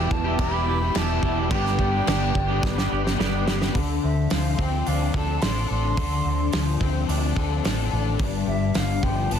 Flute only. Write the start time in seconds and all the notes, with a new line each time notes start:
Already playing: G5
0.12 A5
0.39 B5
0.98 A5
1.53 G5
4.04 E5
4.33 F5
4.62 G5
4.88 F5
5.16 A5
5.42 C6
5.71 C6
8.48 E5
8.76 F5
9.03 G5
9.33 A5